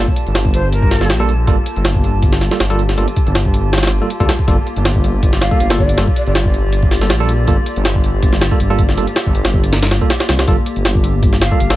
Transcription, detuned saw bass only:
0.27 G1
1.10 A#1
1.47 G1
1.76 G1
2.60 G1
2.98 G1
3.27 G1
3.92 G1
4.20 D2
4.48 G1
4.76 G1
5.60 G1
5.98 G1
6.27 G1
7.10 A#1
7.48 G1
7.77 G1
8.60 G1
8.98 G1
9.26 G1
10.29 C2
10.48 G1
10.76 G1
11.60 G1

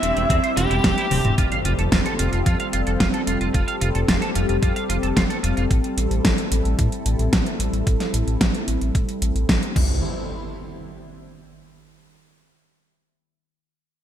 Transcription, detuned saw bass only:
0.03 E1
0.16 E1
0.30 E2
0.57 E1
0.70 E1
0.84 E1
1.11 D1
1.25 E1
1.38 F1
1.65 F1
1.79 F1
1.92 F1
2.19 F1
2.33 F1
2.46 F2
2.73 F1
2.87 F1
3.00 F1
3.27 F1
3.41 F1
3.54 F1
3.81 F1
3.95 F1
4.08 F1
4.35 F1
4.49 F1
4.62 F2
4.90 F1
5.03 F1
5.16 F1
5.44 F1
5.57 F1
5.71 A1
5.97 A1
6.11 A1
6.25 A1
6.52 A1
6.65 A1
6.79 A2
7.06 A1
7.19 A1
7.33 A1
7.60 A1
7.73 A1
7.87 A1
8.14 A1
8.27 A1
8.41 A1
8.68 A1
8.81 A1
8.95 A2
9.22 A1
9.35 A1
9.49 A1
9.76 C2

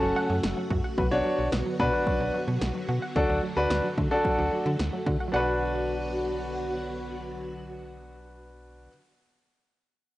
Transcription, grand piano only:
Already playing: C#4 F#4 A4
0.98 F#4 B4
1.11 D4 F#4 C#5
1.80 D4 F#4 B4
3.16 D4 F#4 A4
3.57 D4 F#4 B4
4.11 D4 F#4 A4
5.32 D4 F#4
5.36 B4

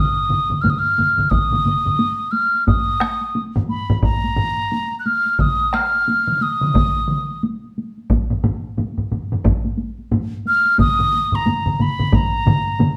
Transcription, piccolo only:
Already playing: D#6
0.61 F6
0.70 D#6
0.79 F6
1.30 D#6
2.31 F6
2.67 D#6
3.70 B5
4.03 A#5
5.00 F#6
5.06 F6
5.33 F6
5.41 D#6
5.74 F6
6.42 D#6
10.47 F6
10.80 D#6
11.35 A#5
11.82 B5
12.15 A#5

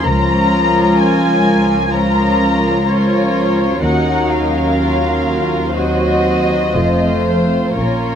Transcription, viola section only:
0.06 F3 C#4
1.93 F3 C#4
2.89 F3 C#4
3.83 F#3 C#4
5.75 F#3 C4
6.75 A3 C4
7.79 A#3 C#4

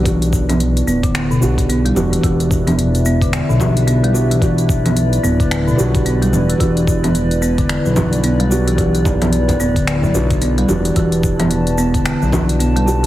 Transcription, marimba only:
0.05 E3
0.49 B3
0.87 B3
1.03 D3
1.31 B2
1.69 B3
1.85 G3
2.13 E3
2.24 E3
2.67 B3
3.06 B3
3.22 D3
3.49 B2
3.87 B3
4.04 G3
4.31 E3
4.42 E3
4.85 B3
5.24 B3
5.40 D3
5.67 B2
6.06 B3
6.22 G3
6.49 E3
6.60 E3
7.04 B3
7.42 B3
7.58 D3
7.86 F#3
8.24 B3
8.40 G3
8.67 E3
8.78 E3
9.22 B3
9.60 B3
9.76 D3
10.04 F#3
10.42 B3
10.58 G3
10.85 E3
10.96 E3
11.40 B3
11.78 B3
11.94 D3
12.22 F#3
12.60 B3
12.76 G3
13.03 E3

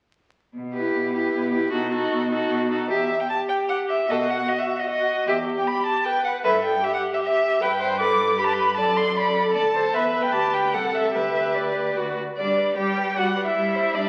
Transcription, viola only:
0.75 E4
1.14 E4
1.53 E4
1.72 D#4
1.92 D#4
2.30 D#4
2.71 D#4
3.30 G4
4.09 F#4
4.89 F#4
5.27 G4
6.05 B4
6.44 A4
6.83 G4
7.61 B4
8.00 A4
8.38 G4
8.76 A4
9.15 A4
9.94 B4
10.34 G4
10.74 A4
11.14 B4
12.37 G3
12.77 G3
13.18 G3
13.57 G3
13.95 G3

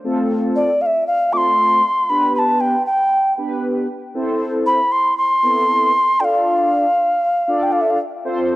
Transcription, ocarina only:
0.56 D5
0.81 F5
0.86 E5
1.07 F5
1.33 D6
1.37 C6
2.10 B5
2.35 A5 B5
2.61 G5
2.86 G5
4.66 B5
4.92 C6
5.17 C6
6.20 G5
6.24 F5
7.63 G5
7.72 F5
7.81 E5
7.90 F5

